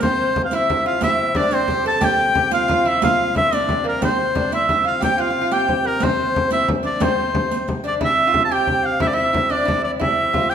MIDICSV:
0, 0, Header, 1, 7, 480
1, 0, Start_track
1, 0, Tempo, 333148
1, 20, Time_signature, 6, 3, 24, 8
1, 15199, End_track
2, 0, Start_track
2, 0, Title_t, "Recorder"
2, 0, Program_c, 0, 74
2, 60, Note_on_c, 0, 72, 78
2, 662, Note_off_c, 0, 72, 0
2, 764, Note_on_c, 0, 76, 86
2, 1425, Note_off_c, 0, 76, 0
2, 1462, Note_on_c, 0, 76, 86
2, 1910, Note_off_c, 0, 76, 0
2, 1948, Note_on_c, 0, 74, 88
2, 2169, Note_off_c, 0, 74, 0
2, 2191, Note_on_c, 0, 72, 86
2, 2635, Note_off_c, 0, 72, 0
2, 2684, Note_on_c, 0, 81, 87
2, 2913, Note_on_c, 0, 79, 81
2, 2934, Note_off_c, 0, 81, 0
2, 3624, Note_on_c, 0, 77, 91
2, 3646, Note_off_c, 0, 79, 0
2, 4333, Note_off_c, 0, 77, 0
2, 4342, Note_on_c, 0, 77, 87
2, 4791, Note_off_c, 0, 77, 0
2, 4837, Note_on_c, 0, 76, 78
2, 5090, Note_on_c, 0, 74, 84
2, 5112, Note_off_c, 0, 76, 0
2, 5563, Note_on_c, 0, 70, 66
2, 5584, Note_off_c, 0, 74, 0
2, 5793, Note_on_c, 0, 72, 75
2, 5814, Note_off_c, 0, 70, 0
2, 6275, Note_on_c, 0, 74, 83
2, 6296, Note_off_c, 0, 72, 0
2, 6518, Note_on_c, 0, 76, 82
2, 6540, Note_off_c, 0, 74, 0
2, 6747, Note_off_c, 0, 76, 0
2, 6756, Note_on_c, 0, 76, 77
2, 6994, Note_on_c, 0, 77, 70
2, 7016, Note_off_c, 0, 76, 0
2, 7210, Note_off_c, 0, 77, 0
2, 7219, Note_on_c, 0, 79, 82
2, 7456, Note_on_c, 0, 77, 75
2, 7478, Note_off_c, 0, 79, 0
2, 7959, Note_on_c, 0, 79, 81
2, 7981, Note_off_c, 0, 77, 0
2, 8174, Note_off_c, 0, 79, 0
2, 8183, Note_on_c, 0, 72, 68
2, 8403, Note_off_c, 0, 72, 0
2, 8412, Note_on_c, 0, 70, 62
2, 8643, Note_off_c, 0, 70, 0
2, 8659, Note_on_c, 0, 72, 74
2, 9333, Note_off_c, 0, 72, 0
2, 9385, Note_on_c, 0, 76, 73
2, 9610, Note_off_c, 0, 76, 0
2, 10093, Note_on_c, 0, 72, 95
2, 11002, Note_off_c, 0, 72, 0
2, 11300, Note_on_c, 0, 74, 72
2, 11528, Note_on_c, 0, 76, 83
2, 11549, Note_off_c, 0, 74, 0
2, 12157, Note_off_c, 0, 76, 0
2, 12165, Note_on_c, 0, 81, 64
2, 12264, Note_on_c, 0, 79, 84
2, 12286, Note_off_c, 0, 81, 0
2, 12721, Note_on_c, 0, 77, 73
2, 12743, Note_off_c, 0, 79, 0
2, 12973, Note_off_c, 0, 77, 0
2, 12983, Note_on_c, 0, 76, 85
2, 13076, Note_off_c, 0, 76, 0
2, 13174, Note_on_c, 0, 76, 79
2, 13663, Note_off_c, 0, 76, 0
2, 13698, Note_on_c, 0, 74, 87
2, 14147, Note_off_c, 0, 74, 0
2, 14166, Note_on_c, 0, 74, 70
2, 14412, Note_on_c, 0, 76, 82
2, 14434, Note_off_c, 0, 74, 0
2, 15114, Note_off_c, 0, 76, 0
2, 15123, Note_on_c, 0, 79, 86
2, 15199, Note_off_c, 0, 79, 0
2, 15199, End_track
3, 0, Start_track
3, 0, Title_t, "Shawm"
3, 0, Program_c, 1, 111
3, 27, Note_on_c, 1, 72, 85
3, 603, Note_off_c, 1, 72, 0
3, 643, Note_on_c, 1, 77, 66
3, 788, Note_on_c, 1, 76, 81
3, 810, Note_off_c, 1, 77, 0
3, 1246, Note_off_c, 1, 76, 0
3, 1257, Note_on_c, 1, 77, 86
3, 1464, Note_off_c, 1, 77, 0
3, 1491, Note_on_c, 1, 76, 99
3, 1969, Note_on_c, 1, 74, 100
3, 1991, Note_off_c, 1, 76, 0
3, 2226, Note_on_c, 1, 72, 90
3, 2248, Note_off_c, 1, 74, 0
3, 2686, Note_off_c, 1, 72, 0
3, 2703, Note_on_c, 1, 81, 99
3, 2942, Note_on_c, 1, 79, 109
3, 2964, Note_off_c, 1, 81, 0
3, 3645, Note_off_c, 1, 79, 0
3, 3652, Note_on_c, 1, 77, 95
3, 4145, Note_on_c, 1, 76, 89
3, 4166, Note_off_c, 1, 77, 0
3, 4366, Note_off_c, 1, 76, 0
3, 4374, Note_on_c, 1, 77, 98
3, 4809, Note_off_c, 1, 77, 0
3, 4860, Note_on_c, 1, 76, 99
3, 5108, Note_on_c, 1, 74, 86
3, 5130, Note_off_c, 1, 76, 0
3, 5568, Note_off_c, 1, 74, 0
3, 5589, Note_on_c, 1, 70, 73
3, 5793, Note_off_c, 1, 70, 0
3, 5819, Note_on_c, 1, 72, 81
3, 6475, Note_off_c, 1, 72, 0
3, 6547, Note_on_c, 1, 76, 90
3, 6976, Note_off_c, 1, 76, 0
3, 7013, Note_on_c, 1, 77, 84
3, 7225, Note_off_c, 1, 77, 0
3, 7261, Note_on_c, 1, 79, 93
3, 7505, Note_on_c, 1, 77, 83
3, 7526, Note_off_c, 1, 79, 0
3, 7972, Note_on_c, 1, 79, 82
3, 7994, Note_off_c, 1, 77, 0
3, 8457, Note_on_c, 1, 70, 81
3, 8478, Note_off_c, 1, 79, 0
3, 8691, Note_on_c, 1, 72, 81
3, 8713, Note_off_c, 1, 70, 0
3, 9396, Note_off_c, 1, 72, 0
3, 9405, Note_on_c, 1, 76, 90
3, 9620, Note_off_c, 1, 76, 0
3, 9881, Note_on_c, 1, 74, 82
3, 10129, Note_on_c, 1, 72, 71
3, 10150, Note_off_c, 1, 74, 0
3, 11078, Note_off_c, 1, 72, 0
3, 11341, Note_on_c, 1, 74, 89
3, 11442, Note_off_c, 1, 74, 0
3, 11596, Note_on_c, 1, 76, 101
3, 12150, Note_off_c, 1, 76, 0
3, 12168, Note_on_c, 1, 81, 77
3, 12294, Note_on_c, 1, 79, 97
3, 12316, Note_off_c, 1, 81, 0
3, 12764, Note_on_c, 1, 77, 88
3, 12786, Note_off_c, 1, 79, 0
3, 12983, Note_off_c, 1, 77, 0
3, 12992, Note_on_c, 1, 76, 95
3, 13075, Note_on_c, 1, 74, 85
3, 13097, Note_off_c, 1, 76, 0
3, 13174, Note_on_c, 1, 76, 104
3, 13196, Note_off_c, 1, 74, 0
3, 13723, Note_on_c, 1, 74, 93
3, 13744, Note_off_c, 1, 76, 0
3, 14168, Note_off_c, 1, 74, 0
3, 14176, Note_on_c, 1, 74, 76
3, 14286, Note_off_c, 1, 74, 0
3, 14435, Note_on_c, 1, 76, 101
3, 15126, Note_on_c, 1, 79, 92
3, 15147, Note_off_c, 1, 76, 0
3, 15199, Note_off_c, 1, 79, 0
3, 15199, End_track
4, 0, Start_track
4, 0, Title_t, "Resonator guitar played with a steel bar"
4, 0, Program_c, 2, 25
4, 40, Note_on_c, 2, 60, 80
4, 609, Note_off_c, 2, 60, 0
4, 761, Note_on_c, 2, 64, 86
4, 976, Note_off_c, 2, 64, 0
4, 1003, Note_on_c, 2, 64, 74
4, 1230, Note_off_c, 2, 64, 0
4, 1236, Note_on_c, 2, 65, 79
4, 1477, Note_off_c, 2, 65, 0
4, 1490, Note_on_c, 2, 64, 88
4, 1954, Note_off_c, 2, 64, 0
4, 1959, Note_on_c, 2, 62, 78
4, 2176, Note_off_c, 2, 62, 0
4, 2198, Note_on_c, 2, 60, 80
4, 2439, Note_off_c, 2, 60, 0
4, 2453, Note_on_c, 2, 67, 75
4, 2672, Note_off_c, 2, 67, 0
4, 2677, Note_on_c, 2, 69, 91
4, 2886, Note_off_c, 2, 69, 0
4, 2892, Note_on_c, 2, 67, 93
4, 3366, Note_off_c, 2, 67, 0
4, 3383, Note_on_c, 2, 67, 79
4, 3613, Note_off_c, 2, 67, 0
4, 3619, Note_on_c, 2, 65, 91
4, 3846, Note_off_c, 2, 65, 0
4, 3862, Note_on_c, 2, 65, 83
4, 4105, Note_off_c, 2, 65, 0
4, 4111, Note_on_c, 2, 64, 74
4, 4352, Note_off_c, 2, 64, 0
4, 4357, Note_on_c, 2, 65, 86
4, 4817, Note_off_c, 2, 65, 0
4, 4823, Note_on_c, 2, 64, 76
4, 5070, Note_off_c, 2, 64, 0
4, 5076, Note_on_c, 2, 62, 82
4, 5532, Note_on_c, 2, 58, 63
4, 5567, Note_off_c, 2, 62, 0
4, 5784, Note_off_c, 2, 58, 0
4, 5790, Note_on_c, 2, 60, 80
4, 6269, Note_on_c, 2, 62, 75
4, 6283, Note_off_c, 2, 60, 0
4, 6492, Note_off_c, 2, 62, 0
4, 6522, Note_on_c, 2, 64, 73
4, 6742, Note_off_c, 2, 64, 0
4, 6759, Note_on_c, 2, 64, 68
4, 6978, Note_off_c, 2, 64, 0
4, 6984, Note_on_c, 2, 65, 66
4, 7210, Note_off_c, 2, 65, 0
4, 7216, Note_on_c, 2, 67, 81
4, 7459, Note_off_c, 2, 67, 0
4, 7465, Note_on_c, 2, 65, 78
4, 7624, Note_off_c, 2, 65, 0
4, 7641, Note_on_c, 2, 65, 63
4, 7782, Note_off_c, 2, 65, 0
4, 7799, Note_on_c, 2, 65, 78
4, 7940, Note_off_c, 2, 65, 0
4, 7946, Note_on_c, 2, 67, 89
4, 8670, Note_on_c, 2, 60, 76
4, 8689, Note_off_c, 2, 67, 0
4, 9388, Note_on_c, 2, 64, 73
4, 9411, Note_off_c, 2, 60, 0
4, 9611, Note_off_c, 2, 64, 0
4, 9840, Note_on_c, 2, 62, 68
4, 10098, Note_on_c, 2, 60, 70
4, 10101, Note_off_c, 2, 62, 0
4, 11005, Note_off_c, 2, 60, 0
4, 11291, Note_on_c, 2, 62, 76
4, 11530, Note_off_c, 2, 62, 0
4, 11536, Note_on_c, 2, 64, 90
4, 11912, Note_off_c, 2, 64, 0
4, 11917, Note_on_c, 2, 65, 74
4, 12145, Note_off_c, 2, 65, 0
4, 12267, Note_on_c, 2, 67, 90
4, 12961, Note_off_c, 2, 67, 0
4, 12967, Note_on_c, 2, 64, 80
4, 13067, Note_off_c, 2, 64, 0
4, 13156, Note_on_c, 2, 64, 74
4, 13426, Note_off_c, 2, 64, 0
4, 13443, Note_on_c, 2, 64, 72
4, 13676, Note_off_c, 2, 64, 0
4, 13682, Note_on_c, 2, 62, 80
4, 13901, Note_off_c, 2, 62, 0
4, 13907, Note_on_c, 2, 64, 83
4, 14384, Note_off_c, 2, 64, 0
4, 14401, Note_on_c, 2, 64, 80
4, 14881, Note_off_c, 2, 64, 0
4, 14887, Note_on_c, 2, 65, 76
4, 15136, Note_off_c, 2, 65, 0
4, 15142, Note_on_c, 2, 67, 84
4, 15199, Note_off_c, 2, 67, 0
4, 15199, End_track
5, 0, Start_track
5, 0, Title_t, "Harmonium"
5, 0, Program_c, 3, 20
5, 30, Note_on_c, 3, 48, 70
5, 5778, Note_off_c, 3, 48, 0
5, 5799, Note_on_c, 3, 48, 68
5, 11500, Note_off_c, 3, 48, 0
5, 11522, Note_on_c, 3, 48, 67
5, 15199, Note_off_c, 3, 48, 0
5, 15199, End_track
6, 0, Start_track
6, 0, Title_t, "Frame drum"
6, 41, Note_on_c, 9, 64, 95
6, 186, Note_off_c, 9, 64, 0
6, 520, Note_on_c, 9, 64, 79
6, 664, Note_off_c, 9, 64, 0
6, 1005, Note_on_c, 9, 64, 78
6, 1149, Note_off_c, 9, 64, 0
6, 1242, Note_on_c, 9, 64, 26
6, 1386, Note_off_c, 9, 64, 0
6, 1470, Note_on_c, 9, 64, 88
6, 1615, Note_off_c, 9, 64, 0
6, 1941, Note_on_c, 9, 64, 84
6, 2085, Note_off_c, 9, 64, 0
6, 2418, Note_on_c, 9, 64, 75
6, 2562, Note_off_c, 9, 64, 0
6, 2681, Note_on_c, 9, 64, 28
6, 2825, Note_off_c, 9, 64, 0
6, 2904, Note_on_c, 9, 64, 84
6, 3048, Note_off_c, 9, 64, 0
6, 3391, Note_on_c, 9, 64, 83
6, 3535, Note_off_c, 9, 64, 0
6, 3881, Note_on_c, 9, 64, 87
6, 4025, Note_off_c, 9, 64, 0
6, 4134, Note_on_c, 9, 64, 27
6, 4278, Note_off_c, 9, 64, 0
6, 4369, Note_on_c, 9, 64, 99
6, 4513, Note_off_c, 9, 64, 0
6, 4841, Note_on_c, 9, 64, 93
6, 4985, Note_off_c, 9, 64, 0
6, 5080, Note_on_c, 9, 64, 27
6, 5224, Note_off_c, 9, 64, 0
6, 5313, Note_on_c, 9, 64, 83
6, 5457, Note_off_c, 9, 64, 0
6, 5545, Note_on_c, 9, 64, 28
6, 5689, Note_off_c, 9, 64, 0
6, 5800, Note_on_c, 9, 64, 93
6, 5944, Note_off_c, 9, 64, 0
6, 6276, Note_on_c, 9, 64, 86
6, 6420, Note_off_c, 9, 64, 0
6, 6755, Note_on_c, 9, 64, 77
6, 6899, Note_off_c, 9, 64, 0
6, 6994, Note_on_c, 9, 64, 26
6, 7138, Note_off_c, 9, 64, 0
6, 7241, Note_on_c, 9, 64, 83
6, 7385, Note_off_c, 9, 64, 0
6, 8190, Note_on_c, 9, 64, 81
6, 8334, Note_off_c, 9, 64, 0
6, 8446, Note_on_c, 9, 64, 26
6, 8590, Note_off_c, 9, 64, 0
6, 8691, Note_on_c, 9, 64, 92
6, 8835, Note_off_c, 9, 64, 0
6, 9168, Note_on_c, 9, 64, 86
6, 9312, Note_off_c, 9, 64, 0
6, 9631, Note_on_c, 9, 64, 91
6, 9775, Note_off_c, 9, 64, 0
6, 9879, Note_on_c, 9, 64, 28
6, 10024, Note_off_c, 9, 64, 0
6, 10103, Note_on_c, 9, 64, 99
6, 10247, Note_off_c, 9, 64, 0
6, 10585, Note_on_c, 9, 64, 88
6, 10729, Note_off_c, 9, 64, 0
6, 11073, Note_on_c, 9, 64, 75
6, 11218, Note_off_c, 9, 64, 0
6, 11539, Note_on_c, 9, 64, 86
6, 11683, Note_off_c, 9, 64, 0
6, 11775, Note_on_c, 9, 64, 28
6, 11919, Note_off_c, 9, 64, 0
6, 12018, Note_on_c, 9, 64, 86
6, 12162, Note_off_c, 9, 64, 0
6, 12497, Note_on_c, 9, 64, 81
6, 12641, Note_off_c, 9, 64, 0
6, 12730, Note_on_c, 9, 64, 28
6, 12874, Note_off_c, 9, 64, 0
6, 12971, Note_on_c, 9, 64, 95
6, 13115, Note_off_c, 9, 64, 0
6, 13218, Note_on_c, 9, 64, 27
6, 13362, Note_off_c, 9, 64, 0
6, 13461, Note_on_c, 9, 64, 83
6, 13605, Note_off_c, 9, 64, 0
6, 13949, Note_on_c, 9, 64, 85
6, 14093, Note_off_c, 9, 64, 0
6, 14200, Note_on_c, 9, 64, 26
6, 14344, Note_off_c, 9, 64, 0
6, 14425, Note_on_c, 9, 64, 84
6, 14570, Note_off_c, 9, 64, 0
6, 14667, Note_on_c, 9, 64, 27
6, 14812, Note_off_c, 9, 64, 0
6, 14898, Note_on_c, 9, 64, 85
6, 15042, Note_off_c, 9, 64, 0
6, 15199, End_track
7, 0, Start_track
7, 0, Title_t, "Riq"
7, 9, Note_on_c, 9, 54, 56
7, 153, Note_off_c, 9, 54, 0
7, 734, Note_on_c, 9, 54, 45
7, 878, Note_off_c, 9, 54, 0
7, 1454, Note_on_c, 9, 54, 62
7, 1598, Note_off_c, 9, 54, 0
7, 2173, Note_on_c, 9, 54, 47
7, 2317, Note_off_c, 9, 54, 0
7, 2667, Note_on_c, 9, 54, 21
7, 2811, Note_off_c, 9, 54, 0
7, 2899, Note_on_c, 9, 54, 66
7, 3043, Note_off_c, 9, 54, 0
7, 3624, Note_on_c, 9, 54, 53
7, 3768, Note_off_c, 9, 54, 0
7, 4117, Note_on_c, 9, 54, 21
7, 4261, Note_off_c, 9, 54, 0
7, 4350, Note_on_c, 9, 54, 70
7, 4494, Note_off_c, 9, 54, 0
7, 4845, Note_on_c, 9, 54, 22
7, 4989, Note_off_c, 9, 54, 0
7, 5080, Note_on_c, 9, 54, 49
7, 5224, Note_off_c, 9, 54, 0
7, 5330, Note_on_c, 9, 54, 21
7, 5474, Note_off_c, 9, 54, 0
7, 5790, Note_on_c, 9, 54, 63
7, 5934, Note_off_c, 9, 54, 0
7, 6515, Note_on_c, 9, 54, 46
7, 6659, Note_off_c, 9, 54, 0
7, 6998, Note_on_c, 9, 54, 18
7, 7142, Note_off_c, 9, 54, 0
7, 7238, Note_on_c, 9, 54, 60
7, 7382, Note_off_c, 9, 54, 0
7, 7946, Note_on_c, 9, 54, 48
7, 8090, Note_off_c, 9, 54, 0
7, 8418, Note_on_c, 9, 54, 21
7, 8562, Note_off_c, 9, 54, 0
7, 8649, Note_on_c, 9, 54, 65
7, 8793, Note_off_c, 9, 54, 0
7, 9373, Note_on_c, 9, 54, 49
7, 9517, Note_off_c, 9, 54, 0
7, 9859, Note_on_c, 9, 54, 19
7, 10003, Note_off_c, 9, 54, 0
7, 10090, Note_on_c, 9, 54, 63
7, 10234, Note_off_c, 9, 54, 0
7, 10826, Note_on_c, 9, 54, 48
7, 10970, Note_off_c, 9, 54, 0
7, 11061, Note_on_c, 9, 54, 22
7, 11205, Note_off_c, 9, 54, 0
7, 11306, Note_on_c, 9, 54, 20
7, 11450, Note_off_c, 9, 54, 0
7, 15199, End_track
0, 0, End_of_file